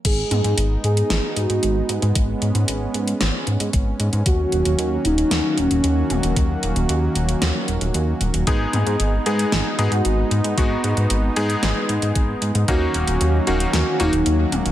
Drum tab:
CC |x---------------|----------------|----------------|----------------|
HH |x-xxx-xxx-xxx-xx|x-xxx-xxx-xxx-xx|x-xxx-xxx-xxx-xx|x-xxx-xxx-xxx-xx|
SD |--------o-------|--------o-------|--------o-------|--------o-------|
T2 |--o-------------|----------------|--------------o-|----------------|
BD |o---------------|o-----------o---|o---------------|o---------------|

CC |----------------|----------------|----------------|
HH |x-xxx-xxx-xxx-xx|x-xxx-xxx-xxx-xx|x-xxx-xxx-xxx-xx|
SD |--------o-------|--------o-------|--------o-------|
T2 |--o-------------|----------------|--------------o-|
BD |o---------------|o-----------o---|o---------------|